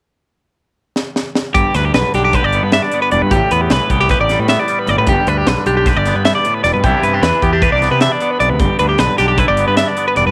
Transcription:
0.96 snare
1.16 snare
1.35 snare
1.55 fingered electric bass G1, clean electric guitar G2 G4, kick, closed hi-hat
1.74 fingered electric bass D2, clean electric guitar D4 B4, snare, closed hi-hat
1.85 clean electric guitar G4
1.94 fingered electric bass B1, clean electric guitar D3 B4, snare, closed hi-hat
2.14 fingered electric bass B1, clean electric guitar D4 G4, snare, closed hi-hat
2.25 clean electric guitar G4
2.33 clean electric guitar G4 B4, kick, closed hi-hat
2.43 fingered electric bass G1, clean electric guitar D5
2.53 clean electric guitar B3, closed hi-hat
2.62 fingered electric bass G2, clean electric guitar B4
2.72 clean electric guitar D4 E5, snare, closed hi-hat
2.82 clean electric guitar D5
2.91 clean electric guitar B3, closed hi-hat
3.02 clean electric guitar B4
3.11 fingered electric bass E1, clean electric guitar G2 D5, closed hi-hat
3.22 fingered electric bass G2, clean electric guitar B4
3.31 fingered electric bass A1, clean electric guitar A2 G4, kick, closed hi-hat
3.51 fingered electric bass E2, clean electric guitar B3 B4, closed hi-hat
3.61 clean electric guitar G4
3.70 fingered electric bass C2, clean electric guitar E3 B4, snare, closed hi-hat
3.90 fingered electric bass C2, clean electric guitar B3 G4, kick, closed hi-hat
4.01 clean electric guitar G4
4.09 clean electric guitar G4 B4, kick, snare, closed hi-hat
4.19 fingered electric bass A1, clean electric guitar D5
4.29 clean electric guitar G3, snare, closed hi-hat
4.39 fingered electric bass A2, clean electric guitar B4
4.48 clean electric guitar B3 E5, snare, closed hi-hat
4.59 clean electric guitar D5
4.68 clean electric guitar G3, closed hi-hat
4.79 clean electric guitar B4
4.87 fingered electric bass G1, clean electric guitar A2 D5, closed hi-hat
4.97 fingered electric bass A2, clean electric guitar B4
5.07 fingered electric bass G1, clean electric guitar G2 G4, kick, closed hi-hat
5.26 fingered electric bass D2, clean electric guitar D4 B4, closed hi-hat
5.38 clean electric guitar G4
5.46 fingered electric bass B1, clean electric guitar D3 B4, snare, closed hi-hat
5.66 fingered electric bass B1, clean electric guitar D4 G4, closed hi-hat
5.77 clean electric guitar G4
5.86 clean electric guitar G4 B4, kick, snare, closed hi-hat
5.95 fingered electric bass G1, clean electric guitar D5
6.05 clean electric guitar B3, snare, closed hi-hat
6.15 fingered electric bass G2, clean electric guitar B4
6.25 clean electric guitar G2 E5, snare, closed hi-hat
6.35 clean electric guitar D5
6.44 clean electric guitar A2, closed hi-hat
6.54 clean electric guitar B4
6.64 fingered electric bass E1, clean electric guitar B2 D5, snare, closed hi-hat
6.74 fingered electric bass G2, clean electric guitar B4
6.84 fingered electric bass C2, clean electric guitar C3 E3 B3 D4 E4 G4, kick, closed hi-hat
7.02 fingered electric bass G2, clean electric guitar B3 B4, closed hi-hat
7.13 clean electric guitar D4 G4
7.22 fingered electric bass E2, clean electric guitar E3 B4, snare, closed hi-hat
7.42 fingered electric bass E2, clean electric guitar B3 G4, kick, closed hi-hat
7.53 clean electric guitar D4 G4
7.62 clean electric guitar G4 B4, kick, closed hi-hat
7.72 fingered electric bass C2, clean electric guitar D5
7.82 clean electric guitar B3, snare, closed hi-hat
7.91 fingered electric bass C3, clean electric guitar B4
8.01 clean electric guitar D4 E5, snare, closed hi-hat
8.12 clean electric guitar D5
8.21 clean electric guitar B3, closed hi-hat
8.31 clean electric guitar B4
8.40 fingered electric bass B1, clean electric guitar C3 D5, closed hi-hat
8.50 fingered electric bass D2, clean electric guitar B4
8.60 fingered electric bass G1, clean electric guitar G2 G4, kick, closed hi-hat
8.79 fingered electric bass D2, clean electric guitar D4 B4, closed hi-hat
8.89 clean electric guitar G4
8.98 fingered electric bass B1, clean electric guitar D3 B4, snare, closed hi-hat
9.18 fingered electric bass B1, clean electric guitar D4 G4, snare, closed hi-hat
9.28 clean electric guitar G4
9.38 clean electric guitar E4 B4, kick, closed hi-hat
9.48 fingered electric bass G1, clean electric guitar G4 D5
9.57 clean electric guitar B3, closed hi-hat
9.68 fingered electric bass G2, clean electric guitar B4
9.77 clean electric guitar D4 E5, snare, closed hi-hat
9.88 clean electric guitar D5
9.97 clean electric guitar B3, closed hi-hat
10.08 clean electric guitar B4
10.15 fingered electric bass E1, clean electric guitar G2 D5, closed hi-hat
10.27 fingered electric bass G2, clean electric guitar B4

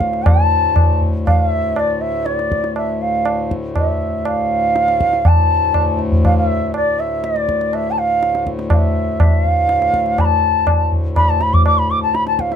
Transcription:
Already playing: harmonium D2 A2, bansuri F5
0.00 tabla ke
0.13 tabla te
0.26 bansuri A5, tabla na, tabla ge
0.76 tabla na, tabla ge
1.01 tabla ge
1.26 bansuri F5, tabla na, tabla ge
1.39 bansuri F5
1.50 bansuri E5
1.76 bansuri D5 E5, tabla na
2.01 bansuri E5
2.26 bansuri D5, tabla te
2.39 tabla te
2.52 tabla ke
2.64 tabla te
2.76 bansuri E5, tabla na
3.02 bansuri F5
3.25 tabla na
3.51 tabla ke
3.76 bansuri E5, tabla na, tabla ge
4.25 bansuri F5, tabla na
4.76 tabla te
4.88 tabla te
5.01 tabla ke
5.13 tabla te
5.24 harmonium D2 A2, bansuri A5, tabla na, tabla ge
5.74 tabla na, tabla ge
5.99 tabla te
6.12 tabla ge
6.25 bansuri F5, tabla na, tabla ge
6.38 bansuri E5
6.74 bansuri D5, tabla na
7.00 bansuri E5
7.24 bansuri D5, tabla te
7.36 tabla te
7.49 tabla ke
7.61 tabla te
7.73 bansuri E5, tabla na
7.91 bansuri A5
7.99 bansuri F5
8.23 tabla te
8.35 tabla te
8.47 tabla ke
8.59 tabla te
8.70 bansuri F5, tabla na, tabla ge
8.76 bansuri E5
9.20 bansuri E5, tabla na, tabla ge
9.44 bansuri F5, tabla ge
9.69 tabla te
9.82 tabla te
9.94 tabla ke
10.06 tabla te
10.18 bansuri B5, tabla na, tabla ge
10.25 bansuri A5
10.67 tabla na, tabla ge
10.92 tabla ge
11.16 bansuri B5, tabla na, tabla ge
11.29 bansuri A5
11.41 bansuri B5, tabla te
11.54 bansuri D6, tabla ge
11.66 bansuri D6, tabla na
11.78 bansuri B5
11.90 bansuri D6
12.03 bansuri A5
12.15 bansuri B5, tabla te
12.27 bansuri A5, tabla te
12.39 bansuri F5, tabla ke
12.52 bansuri E5, tabla te

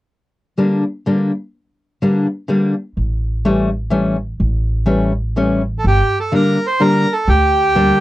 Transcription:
0.58 steel-string acoustic guitar D3 G3 A#3 D4
1.06 steel-string acoustic guitar D3 G3 A#3 D4
2.02 steel-string acoustic guitar D3 G3 A#3 D4
2.48 steel-string acoustic guitar D3 G3 A#3 D4
2.97 upright bass A1
3.45 steel-string acoustic guitar E3 G3 A3 C#4
3.90 steel-string acoustic guitar E3 G3 A3 C#4
4.40 upright bass A1
4.86 steel-string acoustic guitar E3 G3 A3 C#4
5.36 steel-string acoustic guitar E3 G3 A3 C#4
5.79 bandoneon A4
5.84 upright bass G1, bandoneon G4
6.20 bandoneon A4
6.32 steel-string acoustic guitar D3 G3 A#3 D4, bandoneon A#4
6.67 bandoneon C5
6.80 steel-string acoustic guitar D3 G3 A#3 D4, bandoneon A#4
7.13 bandoneon A4
7.28 upright bass D2, bandoneon G4
7.75 steel-string acoustic guitar D3 G3 A#3 D4

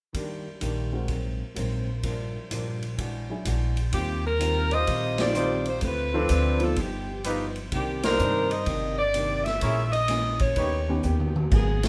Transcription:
0.13 hollow-body jazz guitar D#3 G3 A#3 D4, kick, ride
0.61 upright bass A#1, hollow-body jazz guitar D#3 G3 A#3 D4, hi-hat pedal, ride
0.92 upright piano G#3 C4 F#4 A#4
1.08 hollow-body jazz guitar G#2 F#3 A#3 C4, kick, ride
1.55 upright bass A#1, hollow-body jazz guitar G#2 F#3 A#3 C4, hi-hat pedal, ride
2.03 hollow-body jazz guitar G2 F3 A#3 D4, kick, ride
2.50 upright bass A#1, hollow-body jazz guitar G2 F3 A#3 D4, hi-hat pedal, ride
2.82 ride
2.97 hollow-body jazz guitar E3 G#3 D4 F#4, kick, ride
3.29 upright piano F#3 D4 E4 G#4
3.45 upright bass A#1, hollow-body jazz guitar E3 G#3 D4 F#4, hi-hat pedal, ride
3.77 ride
3.92 upright bass D#2, hollow-body jazz guitar D#3 G3 C4 F4, saxophone section G4, kick, ride
4.26 saxophone section A#4
4.39 hollow-body jazz guitar D#3 G3 C4 F4, hi-hat pedal, ride
4.71 trumpet section D#4 F4 G4 C5, saxophone section D#5, ride
4.87 upright bass A#1, hollow-body jazz guitar D#3 G3 C4 F4, kick, ride
5.18 upright piano F3 C4 D#4 G4, saxophone section D5, snare, ride
5.34 hollow-body jazz guitar D#3 G3 C4 F4, trumpet section D#4 F4 G4 C5, hi-hat pedal
5.66 saxophone section C5, ride
5.81 upright bass D2, hollow-body jazz guitar D3 A3 C4, kick, ride
5.85 hollow-body jazz guitar F4, saxophone section B4
6.14 upright piano F3 C4 D4 A4, trumpet section C4 D4 F4 A4
6.29 upright bass D2, hollow-body jazz guitar D3 A3 C4 F4, hi-hat pedal, ride
6.60 upright piano F3 B3 D#4 F4, saxophone section A4, ride
6.76 upright bass G1, hollow-body jazz guitar G2 F3 B3 D#4, saxophone section G4, kick, ride
7.24 hollow-body jazz guitar G2 F3 B3 D#4, trumpet section D#4 F4 G4 B4, hi-hat pedal, ride
7.56 ride
7.72 upright bass C2, hollow-body jazz guitar C3 D#3 A#3 D4, saxophone section G4, kick, ride
8.03 trumpet section D4 D#4 A#4 C5, saxophone section A#4, snare, ride
8.19 upright bass G2, hollow-body jazz guitar C3 D#3 A#3 D4, hi-hat pedal
8.51 saxophone section D#5, ride
8.66 upright bass G1, hollow-body jazz guitar C3 D#3 A#3, kick, ride
8.70 hollow-body jazz guitar D4
8.99 saxophone section D5
9.14 hollow-body jazz guitar C3 D#3 A#3 D4, hi-hat pedal, ride
9.44 saxophone section E5, snare, ride
9.61 upright bass A#1, hollow-body jazz guitar A#2 E3 G#3 C#4, trumpet section E4 G#4 A#4 C#5, kick, ride
9.93 saxophone section D#5, ride
10.08 hollow-body jazz guitar A#2 E3 G#3 C#4, upright piano E3 A#3 C#4 G#4, snare, hi-hat pedal, ride
10.39 saxophone section C#5, kick, ride
10.56 upright bass D#2, hollow-body jazz guitar D#3 B3 C#4 G4, trumpet section D#4 G4 B4 C#5, kick, ride
10.88 upright piano D#3 B3 C#4 G4
11.03 upright bass D#2, hollow-body jazz guitar D#3 B3 C#4 G4, hi-hat pedal
11.20 mid tom
11.36 mid tom
11.50 upright bass G#1, upright piano F#3 A#3 B3 G#4, hollow-body jazz guitar G#3 B3 F#4 A#4, kick, crash
11.55 saxophone section G#4
11.83 saxophone section B4, snare, ride

